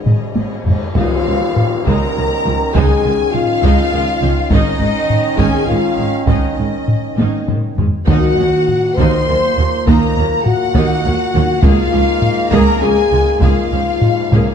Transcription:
Already playing: D#3 G#3 C#4 D#4
0.03 G#1 G#2 G#4 D#5, taiko low-mid
0.08 C#5
0.33 G#1 G#2 G#4 D#5, taiko high
0.38 C#5
0.64 G#1 G#2 G#4 C#5 D#5, taiko low
0.95 C#2 D#3 G#3 D#4 F4 F5, taiko, tam-tam
0.99 C#4
1.26 C#2 D#3 G#3
1.56 taiko low-mid
1.86 C#2 G#3 D#4 A#4 A#5, taiko
2.16 C#2 D#3 G#3
2.45 C#2 F3 C#4
2.73 C#2 G#3 D#4 G#4 G#5, taiko
2.78 G#5
3.04 C#2 D#3 G#3
3.32 F4 F5, taiko low-mid
3.63 C#2 G#3 D#4, taiko
3.93 C#2 D#3 G#3
4.22 C#2 F3 C#4
4.50 G#1 G#2 D#3 C#4 D#4 D#5, taiko
4.80 G#1 G#2 D#3 G#3
5.10 taiko low-mid
5.37 G#1 G#2 C#4 D#4 G#4 G#5, taiko
5.66 G#1 G#2 D#3 G#3 F4 F5
5.98 G#1 G#2 G#3 C#4
6.26 G#1 G#2 C#4 D#4 D#5, taiko
6.58 G#1 G#2 D#3 G#3
6.88 taiko low-mid
7.17 G#1 G#2 C#4 D#4, taiko high
7.48 G#1 G#2 D#3 G#3, taiko low-mid
7.77 G#1 G#2 G#3 C#4, taiko low
8.04 D#2 A#2 D#3 A#3 D#4 F#4 F#5, taiko
8.37 D#2 D#3 F#3
8.68 taiko low-mid
8.95 D#2 A#3 D#4 C5 C6, taiko
9.28 D#2 D#3 F#3
9.57 D#2 F#3 A#3
9.85 D#2 A#3 D#4 A#4 A#5, taiko
10.16 D#2 D#3 F#3
10.43 F#4 F#5, taiko low-mid
10.75 D#2 A#3 D#4, taiko
11.05 D#2 D#3 F#3
11.34 D#2 F#3 A#3
11.61 C#2 G#2 A#3 F4 G#4 F5, taiko
11.92 C#2 F3 C#4
12.22 taiko low-mid
12.50 C#2 A#3 G#4 A#4 A#5, taiko
12.79 C#2 F3 C#4 G#4 G#5
13.10 C#2 G#3 F4
13.40 C#2 A#3 F4 G#4 F5, taiko
13.71 C#2 F3 C#4
14.01 taiko low-mid
14.31 C#2 A#3 G#4, taiko low-mid

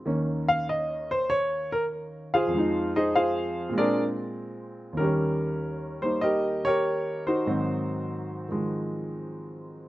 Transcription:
0.05 D#2 D#3 A#3 C#4
0.48 F5
0.69 D#5
1.11 C5
1.30 C#5
1.72 A#4
2.34 F4 G#4 C5 F5
2.47 F2 F3
2.54 G#3 D#4
2.96 D#4 G#4 C5 D#5
3.15 F4 G#4 C5 F5
3.70 A#2 G#3
3.77 C4 D4 G#4 A#4 D5
4.93 D#2
4.97 D#3 G3 C#4 G4 A#4
5.04 C#4
6.02 G3 A#3 D#4 C5
6.21 G4 A#4 D#5
6.65 G4 A#4 C#5
7.27 D#4 F#4 C5
7.46 G#2 D#3 F#3 C4
8.49 D#3 F3 G#3

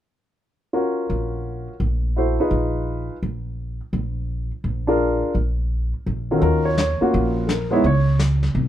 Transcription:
0.73 C#4 F4 F#4 A#4
1.10 A#1
1.80 A#1
2.16 E4 F#4 A4 C5
2.40 D#4 F4 G#4 B4
2.51 A#1
3.23 A#1
3.93 A#1
4.64 A#1
4.87 D4 F4 G#4 A#4
5.35 A#1
6.06 A#1
6.31 D#3 C#4 F4 F#4 A#4
6.38 D#2 A4
6.42 A#4, brush sweep
6.65 C#5
6.78 C#5, snare, hi-hat pedal
7.01 A#3 C#4 F4 F#4, muted upright bass stroke
7.13 A#1, brush sweep
7.46 A4, snare, hi-hat pedal
7.51 A#4
7.71 G#3 B3 D#4 E4 C#5
7.84 C#2 C#5, brush sweep
8.19 snare, hi-hat pedal
8.43 snare
8.54 C2, brush sweep

